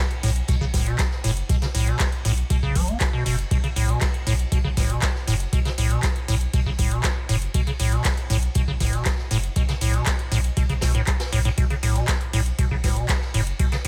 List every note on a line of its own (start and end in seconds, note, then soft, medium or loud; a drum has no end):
0.11 closed hi-hat soft
0.23 0.41 B1 loud
0.23 0.30 A2 loud
0.23 open hi-hat loud
0.23 ride medium
0.36 closed hi-hat medium
0.48 0.55 B2 medium
0.48 kick loud
0.48 closed hi-hat medium
0.48 ride medium
0.61 0.70 B1 medium
0.61 0.65 C#3 medium
0.61 kick medium
0.73 0.91 F#1 medium
0.73 0.88 A2 medium
0.73 kick medium
0.73 snare soft
0.73 open hi-hat loud
0.73 ride medium
0.86 0.97 B2 medium
0.86 closed hi-hat soft
0.86 ride soft
0.98 kick loud
0.98 snare loud
0.98 clap loud
0.98 closed hi-hat medium
0.98 ride medium
1.11 snare soft
1.24 1.42 F#1 loud
1.24 1.31 A2 loud
1.24 open hi-hat loud
1.24 ride medium
1.37 closed hi-hat medium
1.37 ride soft
1.49 1.56 B2 medium
1.49 kick loud
1.49 closed hi-hat medium
1.49 ride medium
1.62 1.66 C#3 medium
1.62 snare medium
1.62 closed hi-hat soft
1.75 1.92 B1 loud
1.75 1.89 A2 medium
1.75 open hi-hat loud
1.75 ride medium
1.87 1.98 B2 medium
1.87 closed hi-hat soft
1.99 kick loud
1.99 snare loud
1.99 clap loud
1.99 closed hi-hat medium
1.99 ride medium
2.12 closed hi-hat soft
2.25 2.43 B1 loud
2.25 2.32 A2 loud
2.25 open hi-hat loud
2.25 ride medium
2.38 closed hi-hat medium
2.50 2.57 B2 medium
2.50 kick loud
2.50 closed hi-hat medium
2.50 ride medium
2.63 2.72 B1 medium
2.63 2.77 C#3 medium
2.63 kick medium
2.75 2.93 F#1 medium
2.75 2.89 F#3 loud
2.75 kick medium
2.75 open hi-hat loud
2.75 ride medium
2.88 2.98 B3 medium
2.88 closed hi-hat soft
3.00 kick loud
3.00 snare loud
3.00 clap loud
3.00 closed hi-hat medium
3.00 ride medium
3.13 3.24 B2 medium
3.26 3.44 F#1 medium
3.26 3.36 B2 medium
3.26 open hi-hat loud
3.26 ride medium
3.39 closed hi-hat soft
3.51 3.58 B2 medium
3.51 kick loud
3.51 closed hi-hat medium
3.51 ride medium
3.64 3.68 C#3 medium
3.64 closed hi-hat soft
3.75 3.94 B1 loud
3.75 3.90 A2 medium
3.75 open hi-hat loud
3.75 ride medium
3.89 3.99 B2 medium
3.89 closed hi-hat soft
4.01 kick loud
4.01 snare loud
4.01 clap loud
4.01 closed hi-hat medium
4.01 ride medium
4.14 closed hi-hat soft
4.27 4.44 B1 loud
4.27 4.34 A2 loud
4.27 open hi-hat medium
4.27 ride medium
4.39 closed hi-hat medium
4.52 4.59 B2 medium
4.52 kick loud
4.52 closed hi-hat medium
4.52 ride medium
4.64 4.73 B1 medium
4.64 4.69 C#3 medium
4.64 kick medium
4.77 4.95 F#1 medium
4.77 4.91 A2 medium
4.77 kick medium
4.77 snare soft
4.77 open hi-hat loud
4.77 ride medium
4.89 5.00 B2 medium
4.89 closed hi-hat medium
4.89 ride soft
5.01 kick loud
5.01 snare loud
5.01 clap loud
5.01 closed hi-hat medium
5.01 ride medium
5.16 snare soft
5.27 5.45 F#1 loud
5.27 5.34 A2 loud
5.27 open hi-hat loud
5.27 ride medium
5.40 closed hi-hat medium
5.40 ride soft
5.53 5.60 B2 medium
5.53 kick loud
5.53 closed hi-hat medium
5.53 ride medium
5.65 5.70 C#3 medium
5.65 snare medium
5.65 closed hi-hat soft
5.78 5.96 B1 loud
5.78 5.92 A2 medium
5.78 open hi-hat loud
5.78 ride medium
5.91 6.01 B2 medium
5.91 closed hi-hat medium
6.03 kick loud
6.03 snare loud
6.03 clap loud
6.03 closed hi-hat medium
6.03 ride medium
6.16 closed hi-hat soft
6.28 6.46 B1 loud
6.28 6.35 A2 loud
6.28 open hi-hat loud
6.28 ride medium
6.41 closed hi-hat medium
6.53 6.60 B2 medium
6.53 kick loud
6.53 closed hi-hat medium
6.53 ride loud
6.66 6.75 B1 medium
6.66 6.70 C#3 medium
6.66 kick medium
6.79 6.96 F#1 medium
6.79 6.93 A2 medium
6.79 kick medium
6.79 open hi-hat loud
6.79 ride medium
6.91 7.02 B2 medium
6.91 closed hi-hat medium
7.03 kick loud
7.03 snare loud
7.03 clap loud
7.03 closed hi-hat medium
7.03 ride medium
7.29 7.47 F#1 loud
7.29 7.36 A2 loud
7.29 open hi-hat loud
7.29 ride medium
7.42 closed hi-hat medium
7.54 7.61 B2 medium
7.54 kick loud
7.54 closed hi-hat medium
7.54 ride medium
7.67 7.71 C#3 medium
7.67 closed hi-hat soft
7.79 7.97 B1 loud
7.79 7.94 A2 medium
7.79 open hi-hat loud
7.79 ride medium
7.92 8.03 B2 medium
7.92 closed hi-hat medium
8.04 kick loud
8.04 snare loud
8.04 clap loud
8.04 closed hi-hat medium
8.04 ride medium
8.17 closed hi-hat soft
8.30 8.48 B1 loud
8.30 8.37 A2 loud
8.30 open hi-hat medium
8.30 ride medium
8.43 closed hi-hat medium
8.54 8.62 B2 medium
8.54 kick loud
8.54 closed hi-hat medium
8.54 ride medium
8.68 8.77 B1 medium
8.68 8.72 C#3 medium
8.68 kick medium
8.80 8.98 F#1 medium
8.80 8.95 A2 medium
8.80 kick medium
8.80 snare soft
8.80 open hi-hat loud
8.80 ride medium
8.92 9.04 B2 medium
8.92 closed hi-hat medium
8.92 ride soft
9.05 kick loud
9.05 snare loud
9.05 clap loud
9.05 closed hi-hat medium
9.05 ride medium
9.18 snare soft
9.31 9.49 F#1 loud
9.31 9.38 A2 loud
9.31 open hi-hat loud
9.31 ride medium
9.44 closed hi-hat medium
9.44 ride soft
9.55 9.63 B2 medium
9.55 kick loud
9.55 closed hi-hat medium
9.55 ride medium
9.69 9.73 C#3 medium
9.69 snare medium
9.69 closed hi-hat soft
9.81 9.99 B1 loud
9.81 9.95 A2 medium
9.81 open hi-hat loud
9.81 ride medium
9.94 10.04 B2 medium
9.94 closed hi-hat medium
10.06 kick loud
10.06 snare loud
10.06 clap loud
10.06 closed hi-hat medium
10.06 ride medium
10.19 closed hi-hat soft
10.32 10.49 B1 loud
10.32 10.39 A2 loud
10.32 open hi-hat loud
10.32 ride medium
10.44 closed hi-hat medium
10.57 10.64 B2 medium
10.57 kick loud
10.57 closed hi-hat medium
10.57 ride medium
10.70 10.78 B1 medium
10.70 10.74 C#3 medium
10.70 kick medium
10.70 closed hi-hat soft
10.81 11.00 B1 medium
10.81 10.93 B2 medium
10.81 kick medium
10.81 snare loud
10.81 open hi-hat loud
10.81 ride medium
10.95 11.02 A2 loud
10.95 closed hi-hat medium
11.07 kick loud
11.07 clap loud
11.07 closed hi-hat medium
11.07 ride medium
11.20 snare medium
11.20 closed hi-hat soft
11.20 ride medium
11.33 11.50 B1 medium
11.33 11.39 A2 loud
11.33 open hi-hat loud
11.45 11.49 A2 loud
11.45 closed hi-hat medium
11.45 ride medium
11.58 11.65 B2 medium
11.58 kick loud
11.58 closed hi-hat medium
11.58 ride medium
11.70 11.75 C#3 medium
11.70 closed hi-hat soft
11.82 12.01 B1 loud
11.82 11.97 A2 medium
11.82 open hi-hat loud
11.82 ride medium
11.96 12.06 B2 medium
11.96 closed hi-hat medium
12.08 kick loud
12.08 snare loud
12.08 clap loud
12.08 closed hi-hat medium
12.08 ride medium
12.21 closed hi-hat soft
12.33 12.51 B1 loud
12.33 12.40 A2 loud
12.33 open hi-hat loud
12.33 ride medium
12.46 closed hi-hat medium
12.59 12.66 B2 medium
12.59 kick loud
12.59 closed hi-hat medium
12.59 ride medium
12.71 12.80 B1 medium
12.71 12.75 C#3 medium
12.71 kick medium
12.84 13.02 F#1 medium
12.84 12.98 A2 medium
12.84 kick medium
12.84 snare soft
12.84 open hi-hat loud
12.84 ride medium
12.96 13.07 B2 medium
12.96 closed hi-hat medium
12.96 ride soft
13.09 kick loud
13.09 snare loud
13.09 clap loud
13.09 closed hi-hat medium
13.09 ride medium
13.22 snare soft
13.34 13.52 F#1 medium
13.34 13.41 A2 loud
13.34 open hi-hat loud
13.34 ride medium
13.46 closed hi-hat medium
13.46 ride soft
13.59 13.66 B2 medium
13.59 kick loud
13.59 closed hi-hat medium
13.59 ride medium
13.72 13.76 C#3 medium
13.72 snare medium
13.72 closed hi-hat soft
13.84 13.88 B1 loud
13.84 open hi-hat loud
13.84 ride medium